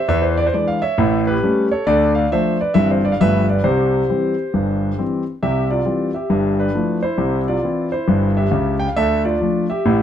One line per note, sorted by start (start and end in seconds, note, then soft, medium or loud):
0.08 0.46 E2 medium
0.08 0.46 E3 medium
0.08 0.23 E5 medium
0.22 0.37 C5 medium
0.37 0.45 D5 medium
0.47 0.53 C5 medium
0.54 0.78 E3 medium
0.54 0.78 G#3 soft
0.54 0.78 D4 medium
0.54 0.67 D5 medium
0.68 0.82 F5 medium
0.82 1.24 C#5 medium
0.82 1.19 E5 medium
0.98 1.35 A1 medium
0.98 1.35 A2 medium
1.27 1.68 G4 medium
1.27 1.64 B4 medium
1.43 1.67 G3 medium
1.43 1.67 A3 soft
1.43 1.67 C#4 medium
1.71 1.86 A4 medium
1.71 1.84 C#5 medium
1.87 2.24 D2 medium
1.87 2.24 D3 medium
1.87 2.14 A4 medium
1.87 2.11 D5 loud
2.15 2.30 D5 medium
2.15 2.28 F5 medium
2.32 2.56 F3 soft
2.32 2.57 A3 soft
2.32 2.57 D4 medium
2.32 2.58 C5 medium
2.32 2.56 E5 medium
2.61 2.75 B4 medium
2.61 2.73 D5 medium
2.74 3.12 G1 medium
2.74 3.13 G2 medium
2.74 3.00 E3 soft
2.74 3.00 G3 soft
2.74 3.00 C4 soft
2.74 2.89 E5 loud
2.91 3.04 C5 medium
3.05 3.12 D5 medium
3.12 3.19 F5 medium
3.21 3.58 G1 medium
3.21 3.58 G2 medium
3.21 3.45 F3 soft
3.21 3.45 A3 soft
3.21 3.46 B3 soft
3.21 3.47 B4 medium
3.21 3.45 E5 loud
3.49 3.64 B4 medium
3.49 3.62 D5 medium
3.64 4.02 C2 medium
3.64 4.01 C3 medium
3.64 5.22 G4 medium
3.64 5.02 C5 medium
4.09 4.33 E3 soft
4.09 4.34 G3 soft
4.09 4.34 C4 soft
4.54 4.91 G1 medium
4.54 4.91 G2 medium
4.98 5.22 E3 soft
4.98 5.22 G3 soft
4.98 5.22 C4 soft
5.43 5.80 C2 medium
5.43 5.80 C3 medium
5.43 5.69 G4 medium
5.43 5.66 E5 medium
5.71 6.12 F4 soft
5.71 6.08 D5 medium
5.85 6.10 E3 soft
5.85 6.10 G3 soft
5.85 6.10 C4 soft
6.14 6.56 G4 soft
6.14 6.52 E5 medium
6.30 6.68 G1 medium
6.30 6.68 G2 medium
6.59 7.01 D4 medium
6.59 6.97 B4 medium
6.75 6.99 F3 soft
6.75 6.99 A3 soft
6.75 6.99 E4 soft
7.03 7.45 E4 medium
7.03 7.40 C5 medium
7.18 7.56 C2 medium
7.18 7.56 C3 medium
7.48 7.90 F4 medium
7.48 7.85 D5 medium
7.63 7.88 E3 soft
7.63 7.88 C4 soft
7.63 7.89 E4 soft
7.92 8.34 E4 medium
7.92 8.30 C5 medium
8.08 8.45 G1 medium
8.08 8.45 G2 medium
8.37 8.78 G4 soft
8.37 8.74 E5 medium
8.51 8.87 C#2 medium
8.51 8.87 C#3 medium
8.80 8.88 G5 medium
8.88 8.96 F5 medium
8.96 9.34 D2 medium
8.96 9.34 D3 medium
8.96 9.23 A4 medium
8.96 9.21 E5 loud
9.25 9.66 F4 medium
9.25 9.62 D5 medium
9.41 9.65 F3 soft
9.41 9.65 A3 soft
9.41 9.66 D4 medium
9.70 10.03 G4 medium
9.70 10.03 E5 medium
9.86 10.03 A1 medium
9.86 10.03 A2 medium